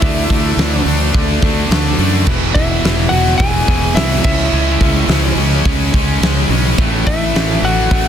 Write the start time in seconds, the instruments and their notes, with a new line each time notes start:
Already playing: lead electric guitar E4 E5
0.01 fingered electric bass D2, distorted electric guitar D3 A3 D4, kick, open hi-hat
0.30 fingered electric bass D2, distorted electric guitar D3 A3 D4, kick, open hi-hat
0.57 fingered electric bass D2, distorted electric guitar D3 A3 D4, snare, open hi-hat
0.85 fingered electric bass D2, distorted electric guitar D3 A3 D4, open hi-hat
1.14 fingered electric bass D2, distorted electric guitar D3 A3 D4, kick, open hi-hat
1.42 fingered electric bass D2, distorted electric guitar D3 A3 D4, kick, open hi-hat
1.69 fingered electric bass D2, distorted electric guitar D3 A3 D4, snare, open hi-hat
1.98 fingered electric bass F#2, distorted electric guitar D3 A3 D4, open hi-hat
2.26 fingered electric bass E1, distorted electric guitar E2 B2 E3, kick, crash
2.54 fingered electric bass E1, distorted electric guitar E2 B2 E3, lead electric guitar E4 E5, kick, open hi-hat
2.83 fingered electric bass E1, distorted electric guitar E2 B2 E3, snare, open hi-hat
3.09 fingered electric bass E1, distorted electric guitar E2 B2 E3, lead electric guitar F#4 F#5, open hi-hat
3.38 fingered electric bass E1, distorted electric guitar E2 B2 E3, lead electric guitar G#4 G#5, kick, open hi-hat
3.68 fingered electric bass E1, distorted electric guitar E2 B2 E3, kick, open hi-hat
3.94 fingered electric bass C2, distorted electric guitar E2 B2 E3, lead electric guitar E4 E5, snare, open hi-hat
4.24 fingered electric bass C#2, distorted electric guitar C#3 G#3 C#4, lead electric guitar E4 E5, kick, crash
4.52 fingered electric bass C#2, distorted electric guitar C#3 G#3 C#4
4.80 fingered electric bass C#2, distorted electric guitar C#3 G#3 C#4, kick, open hi-hat
5.08 fingered electric bass C#2, distorted electric guitar C#3 G#3 C#4, snare, open hi-hat
5.36 fingered electric bass C#2, distorted electric guitar C#3 G#3 C#4, open hi-hat
5.65 fingered electric bass C#2, distorted electric guitar C#3 G#3 C#4, kick, open hi-hat
5.94 fingered electric bass C#2, distorted electric guitar C#3 G#3 C#4, kick, open hi-hat
6.21 fingered electric bass C#2, distorted electric guitar C#3 G#3 C#4, snare, open hi-hat
6.49 fingered electric bass B1, distorted electric guitar C#3 G#3 C#4, open hi-hat
6.78 fingered electric bass A1, distorted electric guitar A2 E3 A3, kick, open hi-hat
7.07 fingered electric bass A1, distorted electric guitar A2 E3 A3, lead electric guitar E4 E5, kick, open hi-hat
7.35 fingered electric bass A1, distorted electric guitar A2 E3 A3, snare, open hi-hat
7.62 fingered electric bass A1, distorted electric guitar A2 E3 A3, lead electric guitar F#4 F#5, open hi-hat
7.90 fingered electric bass A1, distorted electric guitar A2 E3 A3, kick, open hi-hat